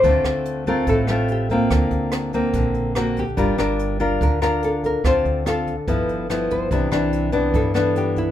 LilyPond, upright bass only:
\new Staff \with { instrumentName = "Upright bass" } { \clef bass \time 4/4 \key d \minor \tempo 4 = 144 d,8 d,4. a,,2 | d,8 d,4. ais,,2 | g,,8 g,,4. d,2 | d,8 d,4. g,,2 |
c,8 c,4. g,2 | }